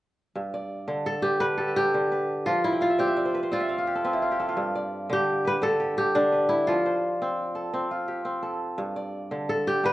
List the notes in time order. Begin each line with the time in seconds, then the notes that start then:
0.35 G2
0.54 D5
0.88 D3
1.06 A4
1.22 G4 B4
1.40 D3 B4
1.58 G4 A4
1.76 G4 A4
1.94 D3
2.12 B4
2.46 F3 F4
2.64 E4
2.73 G5
2.81 F4 F5
2.90 E5
2.99 C4 G4 D5
3.07 E5
3.17 D5
3.25 C5
3.34 B4
3.43 C5
3.51 C4 F4 D5
3.60 E5
3.69 F5
3.78 F4
3.87 G4
3.96 A4
4.05 C4 B4
4.13 E4
4.22 F4
4.31 G4
4.40 A4
4.49 F4
4.57 G2
4.76 D5
5.10 D3 G4
5.45 B4
5.62 D3 A4
5.80 G4
5.97 G4 A4
6.15 D3 D4
6.32 B4
6.49 E4
6.67 F3 F4
6.86 C5
7.22 C4
7.55 A4
7.73 C4
7.91 F4
8.08 G4
8.25 C4
8.43 A4
8.78 G2
8.96 D5
9.31 D3
9.49 A4
9.67 G4
9.84 D3 B4